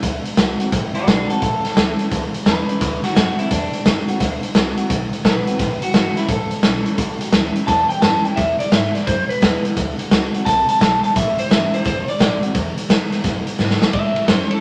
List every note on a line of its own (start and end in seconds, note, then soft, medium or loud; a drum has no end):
0.03 0.24 D2 medium
0.03 0.36 D3 medium
0.03 kick loud
0.03 closed hi-hat medium
0.24 muted upright bass stroke medium
0.24 closed hi-hat medium
0.37 0.59 C2 medium
0.37 0.59 D3 medium
0.37 0.59 A3 medium
0.37 0.60 C4 medium
0.37 0.58 F#4 medium
0.37 snare loud
0.37 closed hi-hat medium
0.59 0.72 C4 soft
0.59 0.72 F#4 medium
0.59 muted upright bass stroke medium
0.59 closed hi-hat medium
0.72 0.93 A1 medium
0.72 1.40 A2 loud
0.72 kick loud
0.72 closed hi-hat medium
0.94 1.07 F#4 medium
0.94 1.07 D5 medium
0.94 muted upright bass stroke medium
0.94 closed hi-hat medium
1.07 1.28 B1 medium
1.07 1.29 D3 medium
1.07 1.29 A3 medium
1.07 1.30 C4 medium
1.07 1.29 D4 medium
1.07 1.28 F#4 medium
1.07 1.29 B4 medium
1.07 kick medium
1.07 snare loud
1.07 closed hi-hat medium
1.29 1.42 C4 soft
1.29 1.41 F#4 medium
1.29 2.31 A4 medium
1.29 muted upright bass stroke medium
1.29 closed hi-hat medium
1.42 1.63 A1 medium
1.42 2.09 A2 medium
1.42 kick loud
1.42 closed hi-hat medium
1.64 muted upright bass stroke medium
1.64 snare soft
1.64 closed hi-hat medium
1.76 1.98 D2 loud
1.76 1.98 E3 medium
1.76 1.99 G3 medium
1.76 1.99 C#4 loud
1.76 1.98 E4 medium
1.76 snare loud
1.76 closed hi-hat medium
1.99 2.12 C#4 soft
1.99 2.11 E4 medium
1.99 muted upright bass stroke medium
1.99 closed hi-hat medium
2.11 2.33 C#2 medium
2.11 2.79 E2 medium
2.11 kick loud
2.11 closed hi-hat medium
2.34 muted upright bass stroke medium
2.34 closed hi-hat medium
2.46 2.68 E2 medium
2.46 2.68 E3 medium
2.46 2.68 G3 medium
2.46 2.69 C#4 medium
2.46 2.68 E4 medium
2.46 3.02 B4 medium
2.46 snare loud
2.46 closed hi-hat medium
2.69 2.81 C#4 medium
2.69 2.81 E4 medium
2.69 muted upright bass stroke medium
2.69 closed hi-hat medium
2.81 3.03 D2 medium
2.81 3.14 D3 medium
2.81 kick loud
2.81 snare soft
2.81 closed hi-hat medium
3.03 3.14 F#4 medium
3.03 muted upright bass stroke medium
3.03 snare soft
3.03 closed hi-hat medium
3.15 3.38 F#2 medium
3.15 3.37 D3 medium
3.15 3.38 A3 medium
3.15 3.38 C4 medium
3.15 3.37 F#4 medium
3.15 3.37 F#4 loud
3.15 snare loud
3.15 closed hi-hat medium
3.38 3.51 C4 soft
3.38 3.52 E4 medium
3.38 3.50 F#4 medium
3.38 muted upright bass stroke medium
3.38 closed hi-hat medium
3.51 3.72 E2 medium
3.51 4.18 A2 loud
3.51 4.52 D4 loud
3.51 kick loud
3.51 closed hi-hat loud
3.73 muted upright bass stroke medium
3.73 closed hi-hat medium
3.85 4.07 F#2 loud
3.85 4.07 D3 medium
3.85 4.07 A3 medium
3.85 4.07 C4 medium
3.85 4.07 F#4 loud
3.85 kick medium
3.85 snare loud
3.85 closed hi-hat medium
4.08 4.21 C4 soft
4.08 4.20 F#4 medium
4.08 muted upright bass stroke medium
4.08 closed hi-hat medium
4.20 4.42 D2 medium
4.20 4.53 D3 medium
4.20 kick loud
4.20 snare soft
4.20 closed hi-hat medium
4.43 muted upright bass stroke medium
4.43 closed hi-hat medium
4.54 4.76 C2 medium
4.54 4.76 D3 medium
4.54 4.77 A3 medium
4.54 4.77 C4 medium
4.54 4.76 F#4 medium
4.54 snare loud
4.54 closed hi-hat medium
4.77 4.90 C4 soft
4.77 4.89 F#4 medium
4.77 muted upright bass stroke medium
4.77 closed hi-hat medium
4.90 5.12 B1 medium
4.90 5.57 A2 medium
4.90 kick loud
4.90 closed hi-hat medium
5.12 muted upright bass stroke medium
5.12 closed hi-hat medium
5.24 5.46 A#1 loud
5.24 5.46 D3 medium
5.24 5.46 A3 medium
5.24 5.47 C4 loud
5.24 5.45 F#4 medium
5.24 5.81 B4 medium
5.24 kick medium
5.24 snare loud
5.24 closed hi-hat medium
5.47 5.60 C4 medium
5.47 5.59 F#4 medium
5.47 muted upright bass stroke medium
5.47 closed hi-hat medium
5.59 5.81 A1 medium
5.59 6.26 A2 medium
5.59 kick loud
5.59 snare soft
5.59 closed hi-hat medium
5.81 5.93 F#4 medium
5.81 muted upright bass stroke medium
5.81 closed hi-hat medium
5.93 6.15 G1 medium
5.93 6.15 E3 medium
5.93 6.16 G3 medium
5.93 6.16 C#4 medium
5.93 6.14 E4 medium
5.93 6.16 F#4 medium
5.93 snare loud
5.93 closed hi-hat medium
6.16 6.29 C#4 soft
6.16 6.28 E4 medium
6.16 6.29 E4 medium
6.16 muted upright bass stroke medium
6.16 snare soft
6.16 closed hi-hat medium
6.29 6.51 A1 medium
6.29 6.96 E2 medium
6.29 7.30 A4 loud
6.29 kick loud
6.29 closed hi-hat medium
6.51 muted upright bass stroke medium
6.51 closed hi-hat medium
6.63 6.85 B1 medium
6.63 6.97 E3 medium
6.63 6.97 G3 medium
6.63 6.97 C#4 medium
6.63 6.98 E4 loud
6.63 kick medium
6.63 snare loud
6.63 closed hi-hat medium
6.86 muted upright bass stroke medium
6.86 closed hi-hat medium
6.98 7.19 C#2 medium
6.98 7.65 A2 medium
6.98 kick loud
6.98 closed hi-hat medium
7.21 muted upright bass stroke soft
7.21 closed hi-hat medium
7.33 7.55 D2 medium
7.33 7.55 E3 medium
7.33 7.55 G3 medium
7.33 7.55 C#4 medium
7.33 7.54 E4 medium
7.33 snare loud
7.33 closed hi-hat medium
7.56 7.68 C#4 soft
7.56 7.67 E4 medium
7.56 muted upright bass stroke medium
7.56 closed hi-hat medium
7.67 7.90 E2 medium
7.67 8.35 E2 loud
7.67 7.89 A5 loud
7.67 kick loud
7.67 snare soft
7.67 closed hi-hat medium
7.89 8.01 G5 medium
7.89 muted upright bass stroke medium
7.89 closed hi-hat medium
8.02 8.25 F#2 medium
8.02 8.24 E3 medium
8.02 8.24 G3 medium
8.02 8.25 C#4 medium
8.02 8.24 E4 medium
8.02 8.24 A5 medium
8.02 snare loud
8.02 closed hi-hat medium
8.24 8.38 C#4 medium
8.24 8.37 E4 medium
8.24 8.36 G5 medium
8.24 muted upright bass stroke medium
8.24 closed hi-hat medium
8.36 9.04 E2 medium
8.36 8.59 E2 medium
8.36 8.58 E5 medium
8.36 kick loud
8.36 snare soft
8.36 closed hi-hat medium
8.59 8.72 D5 medium
8.59 muted upright bass stroke medium
8.59 closed hi-hat medium
8.72 8.94 G#2 medium
8.72 8.93 D3 medium
8.72 8.94 G#3 medium
8.72 8.94 B3 loud
8.72 8.94 E4 loud
8.72 8.94 E5 medium
8.72 snare loud
8.72 closed hi-hat medium
8.94 9.07 B3 soft
8.94 9.07 E4 medium
8.94 9.06 D5 medium
8.94 muted upright bass stroke medium
8.94 snare soft
8.94 closed hi-hat medium
9.07 9.29 F#2 medium
9.07 9.74 B2 medium
9.07 9.29 C5 loud
9.07 kick loud
9.07 closed hi-hat medium
9.29 9.63 B4 loud
9.29 muted upright bass stroke medium
9.29 closed hi-hat medium
9.41 9.63 E2 medium
9.41 9.63 D3 medium
9.41 9.63 G#3 medium
9.41 9.64 B3 loud
9.41 9.63 E4 loud
9.41 kick medium
9.41 snare loud
9.41 closed hi-hat medium
9.63 9.77 B3 medium
9.63 9.76 E4 medium
9.63 muted upright bass stroke medium
9.63 closed hi-hat medium
9.77 9.98 D2 medium
9.77 10.10 D3 medium
9.77 kick loud
9.77 closed hi-hat medium
9.98 muted upright bass stroke medium
9.98 closed hi-hat medium
10.11 10.33 C#2 medium
10.11 10.33 D3 medium
10.11 10.33 A3 medium
10.11 10.33 C4 medium
10.11 10.33 F#4 medium
10.11 snare loud
10.11 closed hi-hat medium
10.34 10.46 C4 soft
10.34 10.46 F#4 medium
10.34 muted upright bass stroke medium
10.34 closed hi-hat medium
10.45 10.68 C2 medium
10.45 10.80 C3 medium
10.45 10.67 A5 loud
10.45 kick loud
10.45 closed hi-hat medium
10.69 10.80 A5 loud
10.69 muted upright bass stroke medium
10.69 closed hi-hat medium
10.81 11.03 B1 medium
10.81 11.02 A5 loud
10.81 kick medium
10.81 snare loud
10.81 closed hi-hat medium
11.03 11.15 A5 medium
11.03 muted upright bass stroke medium
11.03 closed hi-hat medium
11.16 11.37 A1 medium
11.16 11.83 A2 medium
11.16 11.38 E5 medium
11.16 kick loud
11.16 snare soft
11.16 closed hi-hat medium
11.38 11.50 C5 medium
11.38 muted upright bass stroke medium
11.38 closed hi-hat medium
11.50 11.72 G1 medium
11.50 11.72 E3 medium
11.50 11.72 G3 loud
11.50 11.72 C#4 medium
11.50 11.71 E4 loud
11.50 11.72 E5 medium
11.50 snare loud
11.50 closed hi-hat medium
11.72 11.85 C#4 soft
11.72 11.84 E4 medium
11.72 11.85 C5 medium
11.72 muted upright bass stroke medium
11.72 closed hi-hat medium
11.85 12.06 F#1 medium
11.85 12.18 D3 loud
11.85 12.08 C5 loud
11.85 kick loud
11.85 closed hi-hat medium
12.07 12.42 D5 loud
12.07 muted upright bass stroke medium
12.07 closed hi-hat medium
12.19 12.42 A1 medium
12.19 12.41 D3 medium
12.19 12.41 A3 medium
12.19 12.42 C4 loud
12.19 12.41 F#4 loud
12.19 kick medium
12.19 snare loud
12.19 closed hi-hat medium
12.42 12.55 C4 medium
12.42 12.54 F#4 medium
12.42 muted upright bass stroke medium
12.42 closed hi-hat medium
12.55 12.76 E2 medium
12.55 13.22 E2 medium
12.55 kick loud
12.55 closed hi-hat medium
12.77 muted upright bass stroke medium
12.77 closed hi-hat medium
12.89 13.10 F2 loud
12.89 13.11 D3 medium
12.89 13.11 G#3 loud
12.89 13.11 B3 medium
12.89 13.10 E4 loud
12.89 snare loud
12.89 closed hi-hat medium
13.12 13.24 B3 soft
13.12 13.23 E4 medium
13.12 muted upright bass stroke soft
13.12 snare soft
13.12 closed hi-hat medium
13.24 13.46 F#2 medium
13.24 13.91 B2 loud
13.24 kick loud
13.24 snare soft
13.24 closed hi-hat medium
13.47 muted upright bass stroke medium
13.47 closed hi-hat medium
13.58 13.81 G#2 medium
13.58 13.80 D3 medium
13.58 13.80 G#3 medium
13.58 13.81 B3 loud
13.58 13.80 E4 medium
13.58 snare medium
13.71 snare medium
13.81 13.94 B3 soft
13.81 13.93 E4 medium
13.81 muted upright bass stroke medium
13.81 snare loud
13.93 14.60 A2 medium
13.93 14.15 A2 medium
13.93 14.27 E5 medium
13.93 kick loud
13.93 ride medium
14.16 muted upright bass stroke medium
14.16 ride medium
14.28 14.50 F#2 loud
14.28 14.50 E3 medium
14.28 14.50 G3 medium
14.28 14.50 C#4 medium
14.28 14.49 E4 medium
14.28 14.50 C5 medium
14.28 snare loud
14.28 ride medium
14.50 14.61 C#4 soft
14.50 14.61 E4 medium
14.50 14.61 A4 medium
14.50 muted upright bass stroke medium
14.50 ride medium